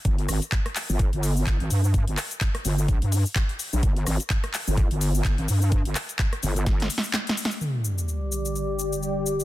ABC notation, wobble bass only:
X:1
M:4/4
L:1/16
Q:"Swing 16ths" 1/4=127
K:Cm
V:1 name="Wobble bass" clef=bass
G,,,2 A,,, z4 G,,,2 G,,,3 z A,,, G,,2- | G,, G,,, z4 G,,,2 B,,, G,,2 z4 B,,, | G,,,2 A,,, z4 G,,,2 G,,,3 z A,,, G,,2- | G,, G,,, z4 G,,,2 G,,,2 z6 |
z16 |]